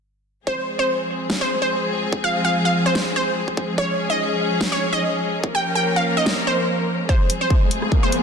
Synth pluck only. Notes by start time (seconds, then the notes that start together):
0.47 C5
0.79 C5
1.41 C5
1.62 C5
2.24 F5
2.45 F5
2.65 F5
2.86 C5
3.16 C5
3.78 C#5
4.10 D#5
4.72 C#5
4.93 D#5
5.55 G5
5.75 G5
5.96 F5
6.17 D#5
6.47 C5
7.09 C5
7.41 C5
8.03 C5